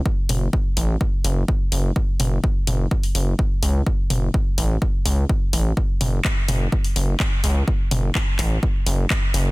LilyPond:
<<
  \new Staff \with { instrumentName = "Analog synth bass" } { \clef bass \time 4/4 \key fis \minor \tempo 4 = 126 r8 fis,,8 r8 a,,8 r8 fis,,8 r8 fis,,8 | r8 fis,,8 r8 fis,,8 r8 fis,,8 r8 cis,8 | r8 fis,,8 r8 a,,8 r8 cis,8 r8 a,,8 | r8 fis,,8 r8 fis,,8 r8 fis,,8 r8 cis,8 |
r8 fis,,8 r8 a,,8 r8 fis,,8 r8 fis,,8 | }
  \new DrumStaff \with { instrumentName = "Drums" } \drummode { \time 4/4 bd8 <hho toml>8 bd8 hho8 bd8 hho8 bd8 hho8 | bd8 <hho toml>8 bd8 <hho toml>8 bd16 hho16 hho8 bd8 hho8 | bd8 <hho toml>8 bd8 hho8 bd8 hho8 bd8 hho8 | bd8 <hho toml>8 <hc bd>8 <hho toml>8 bd16 hho16 hho8 <hc bd>8 hho8 |
bd8 <hho toml>8 <hc bd>8 <hc hho>8 bd8 hho8 <hc bd>8 hho8 | }
>>